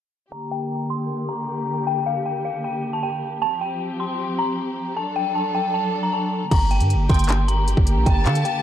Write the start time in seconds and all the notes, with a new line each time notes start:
0.32 D3 A#3 G4 A#5
0.51 G5
0.90 C6
1.29 A#5
1.87 G5
2.06 F5
2.26 G5
2.45 F5
2.64 G5
2.93 A5
3.03 G5
3.42 F3 C4 G4 A5
3.61 G5
4.00 C6
4.39 A#5
4.97 F#3 D4 A4 A5
5.16 G5
5.35 A5
5.55 G5
5.74 A5
6.03 A#5
6.13 A5
6.51 G1 D3 A#3 G4 A#5, kick, closed hi-hat, crash
6.71 G5, closed hi-hat
6.80 G2, closed hi-hat
6.90 closed hi-hat
6.95 G1
7.09 G1 G5 C6, kick, closed hi-hat
7.14 closed hi-hat
7.19 closed hi-hat
7.24 closed hi-hat
7.29 clap, closed hi-hat
7.48 A#5, closed hi-hat
7.68 closed hi-hat
7.77 G1, kick
7.87 closed hi-hat
7.97 A#1
8.06 G1 G5 A5, kick, closed hi-hat
8.26 D3 F5, clap, closed hi-hat
8.35 closed hi-hat
8.45 G5, closed hi-hat